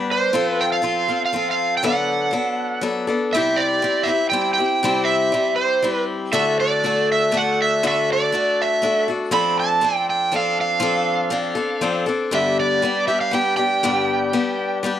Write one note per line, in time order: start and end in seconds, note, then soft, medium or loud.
0.00 0.32 G3 medium
0.00 0.33 B3 medium
0.00 0.34 D4 medium
0.00 0.35 B4 medium
0.11 0.49 C5 medium
0.33 0.81 F3 medium
0.33 0.82 C4 medium
0.33 0.82 F4 medium
0.33 0.84 A4 loud
0.49 0.62 B4 medium
0.61 0.72 G5 loud
0.72 1.24 F5 loud
0.82 1.08 F3 medium
0.82 1.08 C4 medium
0.82 1.08 F4 medium
0.82 1.07 A4 medium
1.08 1.32 C4 soft
1.08 1.33 F4 soft
1.08 1.34 A4 soft
1.25 1.47 F5 medium
1.33 1.82 F3 medium
1.33 1.84 C4 medium
1.33 1.83 F4 medium
1.33 1.83 A4 medium
1.51 1.75 F5 medium
1.77 1.86 G5 loud
1.83 2.34 D3 medium
1.83 2.30 F#3 medium
1.83 2.32 B3 medium
1.83 2.31 D4 medium
1.83 2.32 A4 medium
1.83 2.82 F#5 medium
2.31 2.80 F#3 medium
2.31 2.81 B3 medium
2.31 2.82 D4 medium
2.31 2.82 A4 medium
2.81 3.08 F#3 medium
2.81 3.08 B3 medium
2.81 3.07 D4 medium
2.81 3.06 A4 medium
3.07 3.34 B3 soft
3.07 3.34 D4 soft
3.07 3.33 A4 medium
3.33 3.84 C3 medium
3.33 3.81 G3 medium
3.33 3.81 C4 medium
3.33 3.83 E4 medium
3.33 3.83 G4 medium
3.33 3.59 E5 loud
3.56 4.09 D5 loud
3.82 4.08 G3 medium
3.82 4.08 C4 medium
3.82 4.06 E4 medium
3.82 4.04 G4 medium
4.03 4.32 G4 soft
4.03 4.29 E5 loud
4.07 4.32 C4 soft
4.07 4.32 E4 soft
4.30 4.58 G3 medium
4.30 4.59 C4 medium
4.30 4.58 E4 medium
4.30 4.52 G5 loud
4.34 4.57 G4 medium
4.54 5.08 G5 loud
4.58 4.83 C4 soft
4.58 4.83 E4 soft
4.58 4.84 G4 soft
4.83 5.33 C3 medium
4.83 5.31 G3 medium
4.83 5.33 C4 medium
4.83 5.33 E4 medium
4.83 5.33 G4 loud
5.05 5.53 E5 loud
5.32 5.81 G3 medium
5.32 5.82 C4 medium
5.32 5.83 E4 medium
5.32 5.83 G4 medium
5.56 5.91 C5 medium
5.83 6.32 G3 medium
5.83 6.33 C4 medium
5.83 6.34 E4 medium
5.83 6.34 G4 medium
5.91 6.04 B4 medium
6.33 7.83 D3 medium
6.33 6.83 A3 medium
6.33 6.84 D4 medium
6.33 6.83 F#4 medium
6.33 6.86 A4 loud
6.33 6.59 E5 loud
6.60 7.11 D5 loud
6.84 7.31 A3 medium
6.84 7.32 D4 medium
6.84 7.32 F#4 medium
6.84 7.34 A4 medium
7.12 7.36 E5 loud
7.32 7.83 A3 medium
7.32 7.83 D4 medium
7.32 7.83 F#4 medium
7.32 7.84 A4 medium
7.37 7.59 F#5 loud
7.62 7.86 E5 loud
7.83 8.33 D3 medium
7.83 8.32 A3 medium
7.83 8.33 D4 medium
7.83 8.33 F#4 medium
7.83 8.34 A4 medium
7.88 8.11 E5 loud
8.13 8.62 D5 loud
8.32 8.81 A3 medium
8.32 8.82 D4 medium
8.32 8.82 F#4 medium
8.32 8.84 A4 medium
8.62 9.06 E5 loud
8.82 9.07 A3 medium
8.82 9.08 D4 medium
8.82 9.08 F#4 medium
8.82 9.07 A4 medium
9.08 9.31 D4 soft
9.08 9.32 F#4 soft
9.08 9.31 A4 medium
9.31 9.80 F3 medium
9.31 9.80 C4 medium
9.31 9.82 D4 loud
9.31 9.82 A4 medium
9.31 9.59 B5 loud
9.60 10.05 A5 loud
9.81 10.30 F3 medium
9.81 10.31 C4 medium
9.81 10.32 D4 medium
9.81 10.33 A4 medium
10.10 10.34 G5 loud
10.32 10.79 F3 medium
10.32 10.79 C4 medium
10.32 10.82 D4 medium
10.32 10.81 A4 medium
10.36 10.58 F5 medium
10.61 12.05 F5 medium
10.80 11.29 F3 medium
10.80 11.30 C4 medium
10.80 11.31 D4 medium
10.80 11.31 A4 medium
11.30 11.56 F3 medium
11.30 11.56 C4 medium
11.30 11.55 D4 medium
11.30 11.54 A4 medium
11.55 11.80 C4 soft
11.55 11.81 D4 soft
11.55 11.81 A4 medium
11.81 12.07 F3 medium
11.81 12.07 C4 medium
11.81 12.07 D4 medium
11.81 12.05 A4 medium
12.06 12.32 C4 medium
12.06 12.31 D4 soft
12.06 12.32 A4 medium
12.31 12.82 G2 medium
12.31 12.82 D3 medium
12.31 12.82 G3 medium
12.31 12.82 B3 medium
12.31 12.82 D4 medium
12.31 12.85 G4 medium
12.31 12.59 E5 loud
12.60 13.07 D5 loud
12.82 13.07 G3 medium
12.82 13.08 B3 medium
12.82 13.07 D4 medium
12.82 13.07 G4 medium
13.08 13.30 G3 soft
13.08 13.32 B3 soft
13.08 13.32 D4 medium
13.08 13.32 G4 soft
13.08 13.20 E5 loud
13.21 13.33 F5 medium
13.31 13.57 G3 medium
13.31 13.57 B3 medium
13.31 13.56 D4 medium
13.31 13.55 G4 medium
13.31 13.55 G5 loud
13.56 13.82 G3 soft
13.56 13.83 B3 soft
13.56 13.82 D4 soft
13.56 13.82 G4 medium
13.56 14.78 G5 loud
13.83 14.32 G2 medium
13.83 14.33 D3 medium
13.83 14.32 G3 medium
13.83 14.32 B3 medium
13.83 14.33 D4 loud
13.83 14.33 G4 medium
14.33 14.82 G3 medium
14.33 14.83 B3 medium
14.33 14.83 D4 medium
14.33 14.83 G4 medium
14.83 15.00 G3 medium
14.83 15.00 B3 medium
14.83 15.00 D4 medium
14.83 15.00 G4 medium